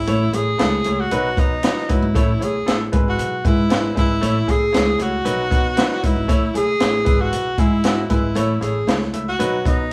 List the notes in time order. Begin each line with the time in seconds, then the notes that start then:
Already playing: E4
0.07 A1 A3 E4 C#5, closed hi-hat
0.33 A1 A3 E4 G#4 C#5, closed hi-hat
0.58 C#2 A3 E4 A4, snare, closed hi-hat
0.84 C#2 A3 E4 C#5, closed hi-hat
1.00 F#4
1.11 B1 F#3 D#4 B4, closed hi-hat
1.37 B2 F#3 D#4 B4, kick, closed hi-hat
1.63 F#3 D#4 B4, snare, closed hi-hat
1.77 snare
1.89 G#2 F#3 D#4 E4 B4, kick, closed hi-hat
2.02 G#1
2.14 A1 A3 E4 C#5, kick, closed hi-hat
2.40 B1 A3 E4 G#4 C#5, closed hi-hat
2.66 A1 A3 E4 A4, snare, closed hi-hat
2.92 G#1 G#3 E4 B4, kick, closed hi-hat
3.09 F#4
3.18 B1, closed hi-hat
3.44 G#2 G#3 E4 B4, kick, closed hi-hat
3.69 G#1 G#3 E4 B4, snare, closed hi-hat
3.95 G#1 G#3 E4 B4, kick, closed hi-hat
4.21 A1 A3 E4 C#5, closed hi-hat
4.47 A1 A3 E4 G#4, kick, closed hi-hat
4.72 C#2 A3 E4 C#5, snare, closed hi-hat
4.98 C#2 A3 E4 F#4 C#5, closed hi-hat
5.25 B1 F#3 D#4 B4, closed hi-hat
5.50 B2 F#3 D#4 B4, kick, closed hi-hat
5.77 F#3 D#4 B4, snare, closed hi-hat
5.92 snare
6.02 G#2 F#3 D#4 E4 B4, kick, closed hi-hat
6.16 G#1
6.28 A1 A3 E4 C#5, kick, closed hi-hat
6.54 B1 A3 E4 G#4, closed hi-hat
6.80 A1 A3 E4 C#5, snare, closed hi-hat
7.05 G#1 G#3 E4 B4, kick, closed hi-hat
7.21 F#4
7.33 B1, closed hi-hat
7.58 G#2 G#3 E4 G#4, kick, closed hi-hat
7.84 G#1 G#3 E4 F#4, snare, closed hi-hat
8.09 G#1 G#3 E4 B4, kick, closed hi-hat
8.35 A1 A3 E4 C#5, closed hi-hat
8.61 A1 A3 E4 G#4 C#5, closed hi-hat
8.87 C#2 A3 E4 C#5, snare, closed hi-hat
9.02 snare
9.13 C#2 A3 E4 E5, closed hi-hat
9.29 F#4
9.39 B1 F#3 D#4 B4, closed hi-hat
9.65 B2 F#3 D#4 B4, kick, closed hi-hat